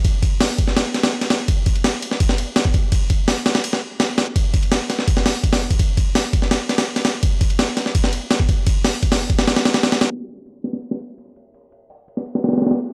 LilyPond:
\new DrumStaff \with { instrumentName = "Drums" } \drummode { \time 4/4 \tempo 4 = 167 <bd cymr>8 <bd cymr>8 <hho sn>8 <bd cymr>16 sn16 <cymr sn>8 <cymr sn>16 <cymr sn>16 r16 <cymr sn>16 <cymr sn>8 | <bd cymr>8 <bd cymr>16 cymr16 <cymr sn>8 cymr16 sn16 <bd cymr>16 sn16 cymr8 <cymr sn>16 bd16 <bd cymr>8 | <bd cymr>8 <bd cymr>8 <hho sn>8 <cymr sn>16 <cymr sn>16 cymr16 sn8. <cymr sn>8 <cymr sn>8 | <bd cymr>8 <bd cymr>16 cymr16 <cymr sn>8 <cymr sn>16 sn16 <bd cymr>16 sn16 <hho sn>8 <bd cymr>16 <hho sn>8 <bd cymr>16 |
<bd cymr>8 <bd cymr>8 <hho sn>8 <bd cymr>16 sn16 <cymr sn>8 <cymr sn>16 <cymr sn>16 r16 <cymr sn>16 <cymr sn>8 | <bd cymr>8 <bd cymr>16 cymr16 <cymr sn>8 <cymr sn>16 sn16 <bd cymr>16 sn16 cymr8 <cymr sn>16 bd16 <bd cymr>8 | <bd cymr>8 <hho sn>8 <bd cymr>16 <hho sn>8 <bd cymr>16 <cymr sn>16 <cymr sn>16 <cymr sn>16 <cymr sn>16 <cymr sn>16 <cymr sn>16 <cymr sn>16 <cymr sn>16 | cymr8 cymr16 cymr16 cymr8 <cymr sn>16 sn16 cymr16 sn16 cymr8 cymr8 cymr8 |
cymr8 cymr8 hho8 cymr16 sn16 cymr16 sn16 <cymr sn>32 <cymr sn>32 <cymr sn>32 <cymr sn>32 <cymr sn>32 <cymr sn>32 <cymr sn>16 cymr8 | }